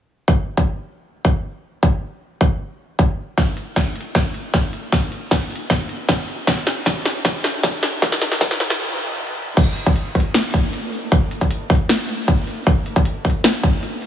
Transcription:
0.28 kick loud
0.57 kick medium
1.25 kick medium
1.83 kick loud
2.41 kick loud
2.99 kick loud
3.38 kick medium
3.38 snare soft
3.38 closed hi-hat medium
3.57 closed hi-hat medium
3.76 kick medium
3.76 snare soft
3.76 closed hi-hat medium
3.96 closed hi-hat soft
4.01 closed hi-hat medium
4.15 kick loud
4.15 snare medium
4.15 closed hi-hat medium
4.34 closed hi-hat medium
4.54 kick medium
4.54 snare medium
4.54 closed hi-hat medium
4.73 closed hi-hat medium
4.92 kick medium
4.92 snare medium
4.92 closed hi-hat medium
5.12 closed hi-hat medium
5.31 kick medium
5.31 snare medium
5.31 closed hi-hat medium
5.51 closed hi-hat soft
5.56 closed hi-hat medium
5.70 kick medium
5.70 snare medium
5.70 closed hi-hat medium
5.89 closed hi-hat medium
6.09 kick medium
6.09 snare medium
6.09 closed hi-hat medium
6.28 closed hi-hat medium
6.47 kick loud
6.47 snare medium
6.47 closed hi-hat medium
6.67 snare medium
6.67 closed hi-hat medium
6.86 kick loud
6.86 snare medium
6.86 closed hi-hat medium
7.05 snare medium
7.05 closed hi-hat soft
7.10 closed hi-hat medium
7.25 kick loud
7.25 snare medium
7.25 closed hi-hat medium
7.44 snare medium
7.44 closed hi-hat medium
7.63 kick loud
7.63 snare medium
7.63 closed hi-hat medium
7.83 snare medium
7.83 closed hi-hat medium
8.02 kick medium
8.02 snare medium
8.02 closed hi-hat medium
8.12 snare medium
8.22 snare medium
8.22 closed hi-hat medium
8.32 snare medium
8.41 kick loud
8.41 snare medium
8.41 closed hi-hat medium
8.51 snare medium
8.60 snare loud
8.60 closed hi-hat soft
8.65 closed hi-hat medium
8.70 snare medium
9.57 kick loud
9.57 closed hi-hat medium
9.57 crash loud
9.76 closed hi-hat medium
9.86 kick loud
9.96 closed hi-hat medium
10.15 kick medium
10.15 closed hi-hat medium
10.20 closed hi-hat medium
10.34 snare loud
10.34 closed hi-hat medium
10.54 kick loud
10.54 closed hi-hat medium
10.73 closed hi-hat medium
10.92 open hi-hat medium
11.12 kick loud
11.12 closed hi-hat medium
11.31 closed hi-hat medium
11.41 kick medium
11.51 closed hi-hat medium
11.70 kick loud
11.70 closed hi-hat medium
11.75 closed hi-hat medium
11.89 snare loud
11.89 closed hi-hat medium
12.09 closed hi-hat medium
12.28 kick loud
12.28 closed hi-hat medium
12.47 open hi-hat medium
12.67 kick loud
12.67 closed hi-hat medium
12.86 closed hi-hat medium
12.96 kick loud
13.05 closed hi-hat medium
13.25 kick medium
13.25 closed hi-hat soft
13.30 closed hi-hat medium
13.44 snare loud
13.44 closed hi-hat medium
13.63 kick loud
13.63 closed hi-hat medium
13.83 closed hi-hat medium
14.02 open hi-hat medium

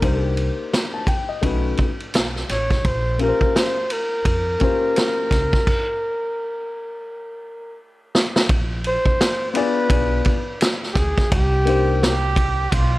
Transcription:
0.00 0.48 C2 loud
0.00 1.02 A#3 medium
0.00 1.02 D4 medium
0.00 1.03 D#4 medium
0.00 1.03 G4 medium
0.00 0.34 A#4 medium
0.00 kick medium
0.00 ride medium
0.04 1.04 C5 medium
0.37 ride soft
0.73 snare loud
0.73 hi-hat pedal soft
0.73 ride medium
0.94 1.07 A5 medium
1.07 1.28 G5 medium
1.07 kick medium
1.07 ride medium
1.29 1.63 D#5 medium
1.41 1.72 B1 medium
1.41 1.86 A3 medium
1.41 1.87 C#4 medium
1.41 1.87 D#4 medium
1.41 1.88 F#4 medium
1.41 1.88 B4 medium
1.41 kick medium
1.41 ride medium
1.77 kick medium
1.77 ride soft
2.00 ride soft
2.14 2.43 B1 medium
2.14 snare loud
2.14 hi-hat pedal soft
2.14 ride medium
2.36 snare soft
2.49 2.78 A1 medium
2.49 2.87 C#5 medium
2.49 snare soft
2.49 ride medium
2.71 kick medium
2.71 snare soft
2.71 ride soft
2.85 3.31 A#1 loud
2.85 3.21 C5 medium
2.85 kick loud
2.85 ride medium
3.18 3.71 A#3 medium
3.18 3.72 C#4 medium
3.18 3.72 F4 medium
3.18 3.73 G4 medium
3.18 3.58 A#4 medium
3.18 3.29 A#4 soft
3.18 ride soft
3.28 3.76 C5 medium
3.41 kick medium
3.56 3.94 C5 medium
3.56 snare loud
3.56 hi-hat pedal soft
3.56 ride medium
3.90 7.80 A#4 medium
3.90 ride medium
4.25 4.54 F2 medium
4.25 kick medium
4.25 ride medium
4.60 5.61 A#3 medium
4.60 5.61 C#4 medium
4.60 5.62 F4 medium
4.60 5.62 G4 medium
4.60 5.63 C5 medium
4.60 kick medium
4.60 ride soft
4.96 snare loud
4.96 hi-hat pedal soft
4.96 ride medium
5.31 5.49 C#2 medium
5.31 kick medium
5.31 snare soft
5.31 ride medium
5.53 kick medium
5.53 snare soft
5.67 kick medium
5.67 crash medium
8.15 snare medium
8.36 snare medium
8.49 8.95 A#1 medium
8.49 kick loud
8.49 ride medium
8.84 9.47 C5 loud
8.84 ride medium
9.05 kick medium
9.21 snare loud
9.21 hi-hat pedal medium
9.21 ride medium
9.51 9.87 B3 medium
9.51 9.88 D4 medium
9.51 9.58 C5 medium
9.51 ride medium
9.55 9.89 F4 medium
9.55 9.90 G#4 medium
9.55 10.62 B4 loud
9.55 9.91 D5 medium
9.89 10.19 B1 medium
9.89 10.33 B3 medium
9.89 10.34 D4 medium
9.89 10.34 F4 medium
9.89 10.35 G#4 medium
9.89 10.35 D5 medium
9.89 kick loud
9.89 ride medium
10.25 kick medium
10.25 ride medium
10.61 snare loud
10.61 hi-hat pedal soft
10.61 ride medium
10.83 snare soft
10.93 11.13 D2 medium
10.93 11.00 G4 medium
10.93 kick loud
10.93 snare soft
10.93 ride medium
10.98 11.33 G#4 loud
11.18 kick loud
11.18 snare soft
11.18 ride soft
11.32 12.69 C2 loud
11.32 12.34 G4 loud
11.32 kick loud
11.32 ride medium
11.65 12.10 A#3 medium
11.65 12.10 D4 medium
11.65 12.11 D#4 medium
11.65 12.11 G4 medium
11.65 12.12 C5 medium
11.65 ride medium
12.02 12.74 G4 loud
12.02 snare loud
12.02 hi-hat pedal medium
12.02 ride medium
12.36 kick loud
12.36 ride medium
12.72 12.99 B1 medium
12.72 12.99 F4 loud
12.72 kick medium
12.72 ride medium

